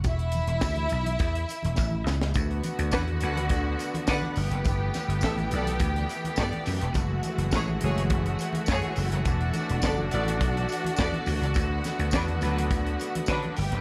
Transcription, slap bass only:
\new Staff \with { instrumentName = "Slap bass" } { \clef bass \time 4/4 \key d \lydian \tempo 4 = 104 e,,8. e,,16 d,8 b,,8 e,8 r16 e,,16 a,,8 cis,8 | d,8 r16 d,16 e,8 d,8 d,8 r8 d16 r16 g,,16 fis,,16 | g,,8 r16 g,,16 a,,8 b,,8 d,8 r8 g,16 r16 fis,16 e,,16 | fis,,8 r16 fis,,16 a,,8 fis,,8 fis,,8 r8 fis,16 r16 fis,,16 fis,,16 |
e,,8 r16 e,,16 fis,,8 a,,8 b,,8 r8 e,16 r16 d,16 cis,16 | d,8 r16 d,16 e,8 d,8 d,8 r8 d16 r16 g,,16 fis,,16 | }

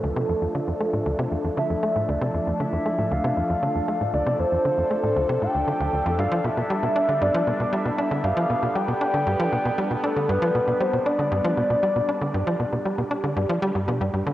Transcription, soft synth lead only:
\new Staff \with { instrumentName = "Soft synth lead" } { \time 4/4 \key g \mixolydian \tempo 4 = 117 a'2~ a'8 r8 e''4 | d''4 e''4 f''2 | d''8 c''2 g''4. | f''8 e''4. d''4 e''4 |
f''4 g''2~ g''8 a'8 | b'4 c''8 d''2~ d''8~ | d''2. r4 | }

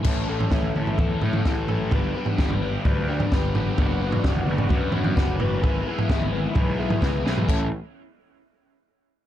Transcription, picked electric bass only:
\new Staff \with { instrumentName = "Picked electric bass" } { \clef bass \time 4/4 \key a \major \tempo 4 = 130 a,,4 a,,8 a,,8 e,8 a,8 a,,4 | g,,8 r8 g,,4 d,4 g,,4 | fis,,4 fis,,8 fis,,8 fis,8 fis,8 fis,,4 | gis,,8 r8 gis,,4 b,,4 cis,8 b,,8 |
a,,8 r2. r8 | }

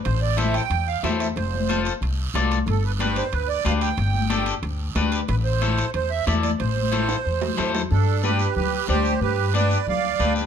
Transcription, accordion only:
\new Staff \with { instrumentName = "Accordion" } { \time 4/4 \key g \mixolydian \tempo 4 = 183 c''8 d''8 e''8 g''4 f''8 e''8 e''8 | c''4. r2 r8 | a'8 b'8 b'8 c''8 b'8 d''8 f''8 g''8~ | g''4. r2 r8 |
b'8 c''4. c''8 e''8 e''8 d''8 | c''2.~ c''8 r8 | <d' a'>4 <g' b'>4 <g' b'>4 <g' c''>4 | <g' b'>4 <b' d''>4 <d'' f''>4. r8 | }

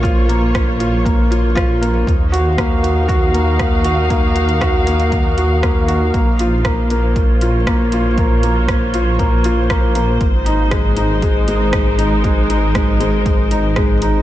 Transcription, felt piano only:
\new Staff \with { instrumentName = "Felt piano" } { \time 4/4 \key bes \minor \tempo 4 = 118 f'8 bes8 r8 f'8 bes8 f'8 f'8 bes8 | r8 ges'8 bes8 ges'8 ges'8 bes8 r8 ges'8 | bes8 ges'8 ges'8 bes8 r8 ges'8 bes8 ges'8 | bes8 f'8 bes8 bes8 r8 f'8 bes8 f'8 |
bes8 bes8 r8 f'8 bes8 f'8 bes8 bes8 | r8 ees'8 aes8 ees'8 aes8 aes8 r8 ees'8 | aes8 ees'8 aes8 aes8 r8 ees'8 aes8 ees'8 | }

